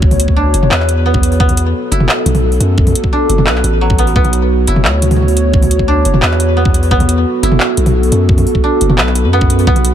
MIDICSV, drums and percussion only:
0, 0, Header, 1, 2, 480
1, 0, Start_track
1, 0, Key_signature, 2, "minor"
1, 0, Tempo, 344828
1, 29, Time_signature, 4, 2, 24, 8
1, 13836, End_track
2, 0, Start_track
2, 0, Title_t, "Drums"
2, 31, Note_on_c, 9, 36, 127
2, 156, Note_on_c, 9, 45, 53
2, 156, Note_on_c, 9, 46, 35
2, 170, Note_off_c, 9, 36, 0
2, 273, Note_on_c, 9, 42, 84
2, 295, Note_off_c, 9, 45, 0
2, 295, Note_off_c, 9, 46, 0
2, 390, Note_on_c, 9, 36, 64
2, 412, Note_off_c, 9, 42, 0
2, 530, Note_off_c, 9, 36, 0
2, 751, Note_on_c, 9, 42, 68
2, 874, Note_on_c, 9, 45, 81
2, 890, Note_off_c, 9, 42, 0
2, 994, Note_on_c, 9, 39, 127
2, 1013, Note_off_c, 9, 45, 0
2, 1116, Note_off_c, 9, 39, 0
2, 1116, Note_on_c, 9, 39, 39
2, 1235, Note_on_c, 9, 42, 79
2, 1255, Note_off_c, 9, 39, 0
2, 1374, Note_off_c, 9, 42, 0
2, 1590, Note_on_c, 9, 36, 110
2, 1715, Note_on_c, 9, 42, 69
2, 1729, Note_off_c, 9, 36, 0
2, 1835, Note_on_c, 9, 46, 33
2, 1855, Note_off_c, 9, 42, 0
2, 1950, Note_on_c, 9, 36, 127
2, 1974, Note_off_c, 9, 46, 0
2, 2073, Note_on_c, 9, 42, 37
2, 2073, Note_on_c, 9, 45, 51
2, 2089, Note_off_c, 9, 36, 0
2, 2190, Note_off_c, 9, 42, 0
2, 2190, Note_on_c, 9, 42, 82
2, 2212, Note_off_c, 9, 45, 0
2, 2329, Note_off_c, 9, 42, 0
2, 2672, Note_on_c, 9, 42, 67
2, 2789, Note_on_c, 9, 45, 78
2, 2811, Note_off_c, 9, 42, 0
2, 2908, Note_on_c, 9, 39, 127
2, 2928, Note_off_c, 9, 45, 0
2, 3047, Note_off_c, 9, 39, 0
2, 3147, Note_on_c, 9, 42, 82
2, 3147, Note_on_c, 9, 45, 60
2, 3267, Note_off_c, 9, 45, 0
2, 3267, Note_on_c, 9, 45, 79
2, 3267, Note_on_c, 9, 46, 36
2, 3286, Note_off_c, 9, 42, 0
2, 3406, Note_off_c, 9, 45, 0
2, 3406, Note_off_c, 9, 46, 0
2, 3506, Note_on_c, 9, 46, 34
2, 3626, Note_on_c, 9, 42, 68
2, 3646, Note_off_c, 9, 46, 0
2, 3765, Note_off_c, 9, 42, 0
2, 3866, Note_on_c, 9, 36, 127
2, 3992, Note_on_c, 9, 45, 49
2, 3992, Note_on_c, 9, 46, 35
2, 4005, Note_off_c, 9, 36, 0
2, 4112, Note_on_c, 9, 42, 79
2, 4132, Note_off_c, 9, 45, 0
2, 4132, Note_off_c, 9, 46, 0
2, 4227, Note_on_c, 9, 36, 66
2, 4252, Note_off_c, 9, 42, 0
2, 4367, Note_off_c, 9, 36, 0
2, 4587, Note_on_c, 9, 42, 63
2, 4709, Note_on_c, 9, 45, 76
2, 4726, Note_off_c, 9, 42, 0
2, 4827, Note_on_c, 9, 39, 126
2, 4848, Note_off_c, 9, 45, 0
2, 4949, Note_off_c, 9, 39, 0
2, 4949, Note_on_c, 9, 39, 39
2, 5067, Note_on_c, 9, 42, 76
2, 5088, Note_off_c, 9, 39, 0
2, 5206, Note_off_c, 9, 42, 0
2, 5428, Note_on_c, 9, 36, 110
2, 5547, Note_on_c, 9, 42, 64
2, 5567, Note_off_c, 9, 36, 0
2, 5668, Note_on_c, 9, 46, 34
2, 5686, Note_off_c, 9, 42, 0
2, 5787, Note_on_c, 9, 36, 119
2, 5807, Note_off_c, 9, 46, 0
2, 5910, Note_on_c, 9, 42, 34
2, 5910, Note_on_c, 9, 45, 51
2, 5927, Note_off_c, 9, 36, 0
2, 6027, Note_off_c, 9, 42, 0
2, 6027, Note_on_c, 9, 42, 74
2, 6049, Note_off_c, 9, 45, 0
2, 6166, Note_off_c, 9, 42, 0
2, 6507, Note_on_c, 9, 42, 62
2, 6629, Note_on_c, 9, 45, 74
2, 6646, Note_off_c, 9, 42, 0
2, 6750, Note_on_c, 9, 39, 121
2, 6768, Note_off_c, 9, 45, 0
2, 6889, Note_off_c, 9, 39, 0
2, 6990, Note_on_c, 9, 42, 75
2, 6990, Note_on_c, 9, 45, 60
2, 7113, Note_off_c, 9, 45, 0
2, 7113, Note_on_c, 9, 45, 74
2, 7113, Note_on_c, 9, 46, 37
2, 7130, Note_off_c, 9, 42, 0
2, 7190, Note_off_c, 9, 45, 0
2, 7190, Note_on_c, 9, 45, 58
2, 7253, Note_off_c, 9, 46, 0
2, 7273, Note_off_c, 9, 45, 0
2, 7273, Note_on_c, 9, 45, 48
2, 7353, Note_on_c, 9, 46, 36
2, 7413, Note_off_c, 9, 45, 0
2, 7471, Note_on_c, 9, 42, 64
2, 7492, Note_off_c, 9, 46, 0
2, 7610, Note_off_c, 9, 42, 0
2, 7705, Note_on_c, 9, 36, 121
2, 7829, Note_on_c, 9, 45, 52
2, 7829, Note_on_c, 9, 46, 37
2, 7844, Note_off_c, 9, 36, 0
2, 7948, Note_on_c, 9, 42, 76
2, 7968, Note_off_c, 9, 45, 0
2, 7968, Note_off_c, 9, 46, 0
2, 8065, Note_on_c, 9, 36, 62
2, 8087, Note_off_c, 9, 42, 0
2, 8204, Note_off_c, 9, 36, 0
2, 8424, Note_on_c, 9, 42, 62
2, 8545, Note_on_c, 9, 45, 77
2, 8563, Note_off_c, 9, 42, 0
2, 8663, Note_on_c, 9, 39, 122
2, 8684, Note_off_c, 9, 45, 0
2, 8788, Note_off_c, 9, 39, 0
2, 8788, Note_on_c, 9, 39, 36
2, 8907, Note_on_c, 9, 42, 72
2, 8927, Note_off_c, 9, 39, 0
2, 9046, Note_off_c, 9, 42, 0
2, 9262, Note_on_c, 9, 36, 105
2, 9387, Note_on_c, 9, 42, 65
2, 9401, Note_off_c, 9, 36, 0
2, 9505, Note_on_c, 9, 46, 36
2, 9526, Note_off_c, 9, 42, 0
2, 9620, Note_on_c, 9, 36, 121
2, 9644, Note_off_c, 9, 46, 0
2, 9747, Note_on_c, 9, 42, 37
2, 9747, Note_on_c, 9, 45, 54
2, 9760, Note_off_c, 9, 36, 0
2, 9867, Note_off_c, 9, 42, 0
2, 9867, Note_on_c, 9, 42, 80
2, 9886, Note_off_c, 9, 45, 0
2, 10006, Note_off_c, 9, 42, 0
2, 10346, Note_on_c, 9, 42, 63
2, 10463, Note_on_c, 9, 45, 80
2, 10485, Note_off_c, 9, 42, 0
2, 10583, Note_on_c, 9, 39, 117
2, 10602, Note_off_c, 9, 45, 0
2, 10722, Note_off_c, 9, 39, 0
2, 10820, Note_on_c, 9, 42, 75
2, 10942, Note_on_c, 9, 45, 83
2, 10942, Note_on_c, 9, 46, 38
2, 10959, Note_off_c, 9, 42, 0
2, 11082, Note_off_c, 9, 45, 0
2, 11082, Note_off_c, 9, 46, 0
2, 11181, Note_on_c, 9, 46, 39
2, 11302, Note_on_c, 9, 42, 64
2, 11321, Note_off_c, 9, 46, 0
2, 11442, Note_off_c, 9, 42, 0
2, 11539, Note_on_c, 9, 36, 118
2, 11662, Note_on_c, 9, 45, 54
2, 11662, Note_on_c, 9, 46, 38
2, 11678, Note_off_c, 9, 36, 0
2, 11785, Note_off_c, 9, 46, 0
2, 11785, Note_on_c, 9, 46, 37
2, 11801, Note_off_c, 9, 45, 0
2, 11901, Note_on_c, 9, 36, 61
2, 11925, Note_off_c, 9, 46, 0
2, 12040, Note_off_c, 9, 36, 0
2, 12263, Note_on_c, 9, 42, 67
2, 12383, Note_on_c, 9, 45, 82
2, 12402, Note_off_c, 9, 42, 0
2, 12502, Note_on_c, 9, 39, 116
2, 12522, Note_off_c, 9, 45, 0
2, 12623, Note_off_c, 9, 39, 0
2, 12623, Note_on_c, 9, 39, 37
2, 12743, Note_on_c, 9, 42, 79
2, 12763, Note_off_c, 9, 39, 0
2, 12882, Note_off_c, 9, 42, 0
2, 13103, Note_on_c, 9, 36, 103
2, 13223, Note_on_c, 9, 42, 67
2, 13242, Note_off_c, 9, 36, 0
2, 13347, Note_on_c, 9, 46, 36
2, 13362, Note_off_c, 9, 42, 0
2, 13463, Note_on_c, 9, 36, 121
2, 13487, Note_off_c, 9, 46, 0
2, 13585, Note_on_c, 9, 42, 38
2, 13585, Note_on_c, 9, 45, 56
2, 13602, Note_off_c, 9, 36, 0
2, 13705, Note_off_c, 9, 42, 0
2, 13705, Note_on_c, 9, 42, 81
2, 13725, Note_off_c, 9, 45, 0
2, 13836, Note_off_c, 9, 42, 0
2, 13836, End_track
0, 0, End_of_file